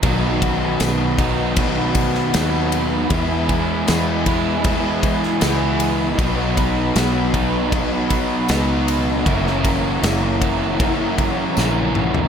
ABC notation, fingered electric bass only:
X:1
M:4/4
L:1/8
Q:1/4=78
K:B
V:1 name="Fingered electric bass" clef=bass
B,,,2 B,,,4 D,,2 | E,,2 E,,4 C,,2 | B,,,2 B,,,4 C,,2 | F,,,2 F,,,4 A,,,2 |]